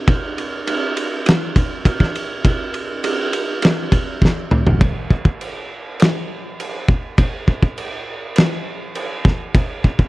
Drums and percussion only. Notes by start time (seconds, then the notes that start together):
0.08 kick, ride
0.38 ride
0.67 ride
0.97 ride
1.26 snare, ride
1.56 kick, ride
1.85 kick, ride
2.00 kick, snare
2.15 ride
2.45 kick, ride
2.74 ride
3.04 ride
3.33 ride
3.62 snare, ride
3.92 kick, ride
4.22 kick, snare
4.51 mid tom
4.67 floor tom
4.81 kick, crash
5.10 kick
5.25 kick
5.41 crash
6.00 snare, crash
6.60 crash
6.88 kick
7.18 kick, crash
7.48 kick
7.63 kick
7.78 crash
8.36 snare, crash
8.95 crash
9.25 kick, snare
9.55 kick, crash
9.84 kick
9.99 kick